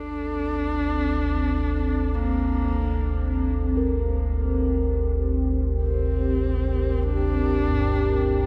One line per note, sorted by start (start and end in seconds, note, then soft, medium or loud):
0.00 8.46 G1 medium
0.00 8.46 D2 medium
0.00 8.46 C4 medium
0.00 2.16 D4 loud
0.00 3.09 A4 medium
1.25 8.46 G4 medium
2.14 3.37 A#3 medium
3.77 8.46 A#4 medium
4.56 8.46 A#4 medium
5.82 7.04 C4 medium
7.03 8.46 D4 loud
7.69 8.46 G2 soft